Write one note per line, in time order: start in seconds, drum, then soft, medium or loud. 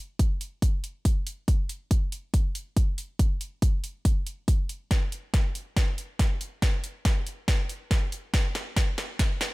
0.19 kick medium
0.19 closed hi-hat medium
0.41 closed hi-hat medium
0.62 kick loud
0.62 closed hi-hat medium
0.84 closed hi-hat medium
1.05 kick medium
1.05 closed hi-hat medium
1.27 closed hi-hat medium
1.48 kick medium
1.48 closed hi-hat medium
1.69 closed hi-hat medium
1.91 kick medium
1.91 closed hi-hat medium
2.12 closed hi-hat medium
2.34 kick loud
2.34 closed hi-hat medium
2.55 closed hi-hat medium
2.77 kick medium
2.77 closed hi-hat medium
2.98 closed hi-hat medium
3.19 kick medium
3.19 closed hi-hat medium
3.41 closed hi-hat medium
3.62 kick loud
3.62 closed hi-hat medium
3.84 closed hi-hat medium
4.05 kick loud
4.05 closed hi-hat medium
4.27 closed hi-hat medium
4.48 kick medium
4.48 closed hi-hat medium
4.69 closed hi-hat medium
4.91 kick loud
4.91 snare soft
4.91 closed hi-hat medium
5.12 closed hi-hat medium
5.34 kick loud
5.34 snare soft
5.34 closed hi-hat medium
5.55 closed hi-hat medium
5.77 kick loud
5.77 snare medium
5.77 closed hi-hat medium
5.98 closed hi-hat medium
6.19 kick medium
6.19 snare medium
6.19 closed hi-hat medium
6.41 closed hi-hat medium
6.62 kick loud
6.62 snare medium
6.62 closed hi-hat medium
6.84 closed hi-hat medium
7.05 kick loud
7.05 snare medium
7.05 closed hi-hat medium
7.27 closed hi-hat medium
7.48 kick loud
7.48 snare medium
7.48 closed hi-hat medium
7.69 closed hi-hat medium
7.91 kick loud
7.91 snare medium
7.91 closed hi-hat medium
8.12 closed hi-hat medium
8.34 kick loud
8.34 snare medium
8.34 closed hi-hat medium
8.55 snare medium
8.55 closed hi-hat medium
8.77 kick loud
8.77 snare medium
8.77 closed hi-hat medium
8.98 snare medium
8.98 closed hi-hat medium
9.19 kick loud
9.19 snare medium
9.19 closed hi-hat medium
9.41 snare medium
9.41 closed hi-hat medium